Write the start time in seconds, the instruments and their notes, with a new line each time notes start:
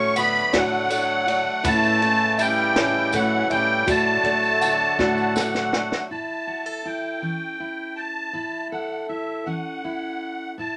Already playing: upright bass A2, harmonium D3 F#3 A3 F#4, steel-string acoustic guitar A3 F#4, trombone C#4, celesta F#4 A4 F#5, accordion C#6
0.16 steel-string acoustic guitar D3 A3 D4 F#4, trombone B3, celesta F#5, accordion B5, ride, tambourine
0.35 tambourine
0.52 upright bass A2, steel-string acoustic guitar A2 D3 A3 D4 F#4, trombone F#3, celesta F#4, accordion F#5, kick, snare, ride
0.89 steel-string acoustic guitar D3 A3 D4 F#4, celesta A4, ride, tambourine
1.26 steel-string acoustic guitar A3 D4 F#4, celesta F#5, ride, tambourine
1.64 steel-string acoustic guitar A2 E3 A3 C#4 E4, upright bass A2, harmonium C#3 E3 E4, trombone A3, celesta E4, accordion A5, kick, ride, tambourine
1.83 tambourine
2.01 steel-string acoustic guitar A3 C#4 E4, celesta A4, ride
2.38 steel-string acoustic guitar E3 A3 C#4 E4, trombone G3, celesta E5, accordion G5, ride, tambourine
2.58 tambourine
2.76 steel-string acoustic guitar A2 E3 A3 C#4 E4, celesta E4, snare, ride
3.13 upright bass A2, steel-string acoustic guitar E3 A3 C#4 E4, trombone F#3, celesta A4, accordion F#5, ride, tambourine
3.50 upright bass A2, trombone G3, steel-string acoustic guitar A3 C#4 E4, celesta E5, accordion G5, ride, tambourine
3.87 steel-string acoustic guitar A2 D3 A3 D4 F#4, upright bass A2, harmonium D3 F#3 A3 F#4, trombone A3, celesta F#4, accordion A5, kick, ride, tambourine
4.23 upright bass A2, steel-string acoustic guitar A3 D4 F#4, celesta A4, ride, tambourine
4.43 tambourine
4.61 steel-string acoustic guitar D3 A3 D4 F#4, celesta F#5, ride, tambourine
4.99 upright bass A2, steel-string acoustic guitar A2 D3 A3 D4 F#4, celesta F#4, accordion F#5, kick, snare
5.18 tambourine
5.36 steel-string acoustic guitar D3 A3 D4 F#4, celesta A4, snare, tambourine
5.54 snare, tambourine
5.73 steel-string acoustic guitar A3 D4 F#4, celesta F#5, snare
5.92 snare
6.10 steel-string acoustic guitar A2 E4, accordion A5
6.47 steel-string acoustic guitar F#4
6.66 steel-string acoustic guitar A4
6.85 steel-string acoustic guitar E4, accordion G5
7.22 steel-string acoustic guitar E3 C#4
7.60 steel-string acoustic guitar E4
7.96 accordion A5
8.33 steel-string acoustic guitar A2 E4
8.71 steel-string acoustic guitar A4, accordion F#5
9.08 steel-string acoustic guitar E4, accordion E5
9.46 steel-string acoustic guitar E3 C#4, accordion F#5
9.84 steel-string acoustic guitar E4
10.58 steel-string acoustic guitar A2 E4, accordion A5